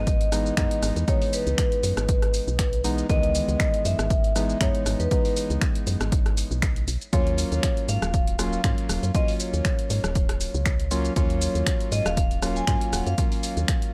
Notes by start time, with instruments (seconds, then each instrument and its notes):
Already playing: fm bass G#1, synth stab E3 G#3 B3 D#4, vibraphone D#5, impact
0.07 kick, closed hi-hat, shaker
0.21 closed hi-hat
0.32 synth stab E3 G#3 B3 D#4, cross-stick, open hi-hat, shaker
0.46 shaker
0.57 fm bass F#2, synth stab E3 G#3 B3 D#4, finger snap, kick, closed hi-hat, shaker
0.71 closed hi-hat
0.83 fm bass G#1, cross-stick, open hi-hat, shaker
0.96 fm bass E2, closed hi-hat, shaker
1.07 synth stab E3 G#3 B3 D#4, vibraphone C#5, kick, closed hi-hat, shaker
1.22 open hi-hat
1.33 vibraphone B4, open hi-hat, shaker
1.47 fm bass C#2, closed hi-hat, shaker
1.58 finger snap, kick, closed hi-hat, shaker
1.72 closed hi-hat
1.83 fm bass F#2, open hi-hat, shaker
1.97 fm bass G#1, cross-stick, closed hi-hat, shaker
2.09 kick, closed hi-hat, shaker
2.22 cross-stick, closed hi-hat
2.34 open hi-hat, shaker
2.48 fm bass B1, shaker
2.59 finger snap, kick, closed hi-hat, shaker
2.73 closed hi-hat
2.84 synth stab E3 G#3 B3 D#4, open hi-hat, shaker
2.98 closed hi-hat, shaker
3.09 fm bass C#2, synth stab D#3 E3 G#3 B3, vibraphone D#5, kick, closed hi-hat, shaker
3.23 closed hi-hat
3.35 open hi-hat, shaker
3.48 fm bass C#2, closed hi-hat, shaker
3.60 finger snap, kick, closed hi-hat, shaker
3.74 closed hi-hat
3.85 fm bass F#2, vibraphone E5, open hi-hat, shaker
3.99 fm bass G#1, cross-stick, closed hi-hat, shaker
4.10 kick, closed hi-hat, shaker
4.24 closed hi-hat
4.35 synth stab E3 G#3 B3 D#4, cross-stick, open hi-hat, shaker
4.50 shaker
4.61 fm bass F#2, synth stab E3 G#3 B3 D#4, vibraphone C#5, finger snap, kick, closed hi-hat, shaker
4.75 closed hi-hat
4.86 fm bass G#1, cross-stick, open hi-hat, shaker
5.00 fm bass E2, vibraphone B4, closed hi-hat, shaker
5.11 synth stab E3 G#3 B3 D#4, kick, closed hi-hat, shaker
5.25 open hi-hat
5.36 open hi-hat, shaker
5.50 fm bass C#2, closed hi-hat, shaker
5.61 finger snap, kick, closed hi-hat, shaker
5.75 closed hi-hat
5.87 fm bass F#2, open hi-hat, shaker
6.01 fm bass G#1, cross-stick, closed hi-hat, shaker
6.12 kick, closed hi-hat, shaker
6.26 cross-stick, closed hi-hat
6.37 open hi-hat, shaker
6.51 fm bass B1, shaker
6.62 finger snap, kick, closed hi-hat, shaker
6.76 closed hi-hat
6.88 fm bass B1, open hi-hat, shaker
7.01 closed hi-hat, shaker
7.13 fm bass D#2, synth stab F#3 A#3 C#4 F4, vibraphone C#5, kick, closed hi-hat, shaker
7.27 closed hi-hat
7.38 open hi-hat, shaker
7.52 fm bass D#2, closed hi-hat, shaker
7.63 finger snap, kick, closed hi-hat, shaker
7.77 closed hi-hat
7.89 fm bass G#2, vibraphone F5, open hi-hat, shaker
8.02 fm bass D#1, cross-stick, closed hi-hat, shaker
8.14 kick, closed hi-hat, shaker
8.27 closed hi-hat
8.39 synth stab F#3 A#3 C#4 F4, cross-stick, open hi-hat, shaker
8.53 shaker
8.64 fm bass G#2, synth stab F#3 A#3 C#4 F4, finger snap, kick, closed hi-hat, shaker
8.78 closed hi-hat
8.89 fm bass D#1, cross-stick, open hi-hat, shaker
9.03 fm bass F#2, closed hi-hat, shaker
9.14 synth stab F#3 A#3 C#4 F4, vibraphone D#5, kick, closed hi-hat, shaker
9.28 open hi-hat
9.40 vibraphone C#5, open hi-hat, shaker
9.54 fm bass D#2, closed hi-hat, shaker
9.65 finger snap, kick, closed hi-hat, shaker
9.79 closed hi-hat
9.90 fm bass G#2, open hi-hat, shaker
10.04 fm bass D#1, cross-stick, closed hi-hat, shaker
10.15 kick, closed hi-hat, shaker
10.29 cross-stick, closed hi-hat
10.41 open hi-hat, shaker
10.54 fm bass C#2, shaker
10.66 finger snap, kick, closed hi-hat, shaker
10.80 closed hi-hat
10.91 synth stab F#3 A#3 C#4 F4, open hi-hat, shaker
11.05 closed hi-hat, shaker
11.16 fm bass D#2, synth stab F#3 A#3 C#4 F4, vibraphone C#5, kick, closed hi-hat, shaker
11.30 closed hi-hat
11.41 open hi-hat, shaker
11.55 fm bass D#2, closed hi-hat, shaker
11.67 finger snap, kick, closed hi-hat, shaker
11.80 closed hi-hat
11.92 fm bass G#2, vibraphone D#5, open hi-hat, shaker
12.06 fm bass D#1, vibraphone F5, cross-stick, closed hi-hat, shaker
12.17 vibraphone F5, kick, closed hi-hat, shaker
12.31 closed hi-hat
12.42 synth stab F#3 A#3 C#4 F4, cross-stick, open hi-hat, shaker
12.56 vibraphone G#5, shaker
12.67 fm bass G#2, synth stab F#3 A#3 C#4 F4, finger snap, kick, closed hi-hat, shaker
12.81 closed hi-hat
12.93 fm bass D#1, vibraphone F#5, cross-stick, open hi-hat, shaker
13.06 fm bass F#2, vibraphone F5, closed hi-hat, shaker
13.18 synth stab F#3 A#3 C#4 F4, kick, closed hi-hat, shaker
13.32 open hi-hat
13.43 open hi-hat, shaker
13.57 fm bass D#2, closed hi-hat, shaker
13.68 finger snap, kick, closed hi-hat, shaker
13.82 closed hi-hat